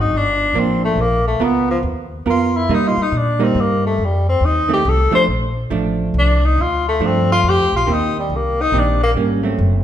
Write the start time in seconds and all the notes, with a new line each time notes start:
0.01 D#4
0.10 G1
0.17 D4
0.53 A1 F3 A#3 D4
0.59 C4
0.85 A3
0.96 A#1
1.01 A#3
1.27 A3
1.40 C#2 B3 F4 A#4
1.44 B3
1.70 F3
1.83 D#2
2.26 F2 B3 F4 A#4
2.30 F4
2.57 E4
2.69 C3 G3 A#3 D#4
2.74 D#4
2.88 F4
2.97 muted upright bass stroke
3.03 D#4
3.12 A#2
3.17 D4
3.39 G3 A#3 D#4
3.44 C4
3.55 G2
3.60 A#3
3.86 A3
3.98 F2
4.05 G3
4.29 C4
4.41 D#2
4.45 D#4
4.68 D#3 A3 C4
4.73 G4
4.85 C2
4.89 A4
5.11 F3 A3 D4 C5, muted upright bass stroke
5.28 A#1
5.70 A1 F3 A3 D4
6.14 C2
6.19 D4
6.45 D#4
6.58 D2
6.62 F4
6.88 A3
7.00 G2 F3 A3 D4
7.06 C4
7.32 F4
7.44 F2
7.49 G4
7.58 D2
7.73 A#1 F4
7.87 D#2 D#3 A#3 C4 G4
7.93 D#4
8.19 G3
8.29 C2
8.36 A#3
8.61 D#4
8.72 A#1 D#3 A#3 C4 G4
8.78 D4
9.03 A#3
9.15 G#1 G3 A#3 C#4
9.43 F#3 A3 C4
9.58 F#1